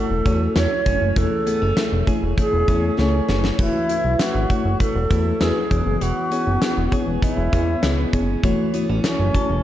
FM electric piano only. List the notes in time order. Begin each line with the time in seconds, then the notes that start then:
Already playing: E3 A3 E4 F#4 C#5
0.25 A3 E4 F#4 C#5
0.55 A3 E4 F#4 C#5
0.86 A3 E4 F#4 C#5
1.16 E3 A3 E4 G#4 C#5
1.46 A3 E4 G#4 C#5
1.77 A3 E4 G#4 E5
2.07 A3 E4 G#4 C#5
2.37 A3 E4 G#4 C#5
2.68 A3 E4 G#4 C#5
2.98 A3 E4 G#4 C#5
3.28 A3 E4 G#4 B4
3.59 E3 A3 E4 F#4 B4
3.89 A3 E4 F#4 C#5
4.19 A3 E4 F#4 B4
4.50 A3 E4 F#4 C#5
4.80 A3 E4 F#4 B4
5.10 A3 E4 F#4 B4
5.40 A3 E4 F#4 B4
5.70 E3 B3 E4 G#4 C#5
6.31 B3 E4 G#4 C#5
6.61 B3 E4 G#4 B4
6.91 B3 E4 G#4 C#5
7.22 B3 E4 G#4 D#5
7.52 B3 E4 G#4 C#5
7.82 B3 E4 G#4 C#5
8.13 B3 E4 G#4 C#5
8.43 E3 A3 E4 F#4 C#5
8.73 A3 E4 F#4 C#5
9.04 A3 E4 F#4 C#5
9.34 A3 E4 F#4 C#5